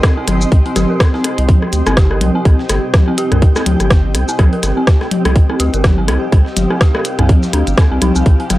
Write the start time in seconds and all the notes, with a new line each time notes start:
Already playing: C4 G4 D#5 C6
0.03 kick, cross-stick, snare, closed hi-hat
0.17 C4
0.28 G1, cross-stick, closed hi-hat, high tom, shaker
0.41 shaker
0.52 C2, kick, closed hi-hat
0.66 C4, closed hi-hat
0.76 G1 G4, cross-stick, snare, closed hi-hat, high tom, shaker
0.90 A#4
1.00 kick, cross-stick, snare, closed hi-hat
1.14 C4, snare
1.24 cross-stick, closed hi-hat
1.38 C2, closed hi-hat
1.45 G5, kick, closed hi-hat, high tom
1.62 cross-stick
1.73 D2, closed hi-hat, shaker
1.87 G1 C4, cross-stick, closed hi-hat, shaker
1.97 G4, kick, cross-stick, snare, closed hi-hat
2.11 A#4, cross-stick
2.21 C2, closed hi-hat, high tom
2.35 C4
2.45 C2, kick, cross-stick, closed hi-hat
2.59 snare
2.69 G1, cross-stick, snare, closed hi-hat, shaker
2.94 kick, cross-stick, snare, closed hi-hat, high tom
3.08 C4
3.18 G4, closed hi-hat, shaker
3.32 C2 A#4, cross-stick, closed hi-hat, mid tom
3.42 kick, closed hi-hat
3.56 C4, cross-stick, snare, shaker
3.66 D2, closed hi-hat, high tom
3.80 G1, cross-stick, closed hi-hat, shaker
3.90 kick, cross-stick, snare, closed hi-hat
4.15 C2, cross-stick, closed hi-hat, shaker
4.29 C4, shaker
4.39 C2 G4, kick, cross-stick, closed hi-hat, high tom
4.53 A#4, closed hi-hat
4.63 G1, cross-stick, snare, closed hi-hat, shaker
4.77 C4
4.87 kick, cross-stick, snare, closed hi-hat
5.01 cross-stick, snare
5.11 F5, closed hi-hat, high tom
5.25 C2, cross-stick, closed hi-hat
5.36 kick, closed hi-hat
5.50 C4, cross-stick
5.60 D2 G4, closed hi-hat, shaker
5.74 G1 A#4, closed hi-hat, shaker
5.84 kick, cross-stick, snare, closed hi-hat, high tom
5.98 C4
6.08 C2, cross-stick, closed hi-hat
6.32 C2, kick, cross-stick, closed hi-hat
6.46 snare
6.57 G1, snare, closed hi-hat, high tom, shaker
6.70 C4, cross-stick
6.81 G4, kick, cross-stick, snare, closed hi-hat
6.95 A#4, cross-stick
7.05 closed hi-hat, shaker
7.19 C2 C4, cross-stick, closed hi-hat, mid tom
7.29 kick, closed hi-hat, high tom
7.43 snare, shaker
7.53 D2 D4, cross-stick, closed hi-hat
7.67 G1, closed hi-hat, shaker
7.78 C4, kick, cross-stick, snare, closed hi-hat
7.91 C2 C4
8.02 C2 D#4, cross-stick, closed hi-hat, high tom, shaker
8.16 C2 C4, shaker
8.26 C2, kick, closed hi-hat
8.40 C4, closed hi-hat
8.50 G1, cross-stick, snare, closed hi-hat, high tom, shaker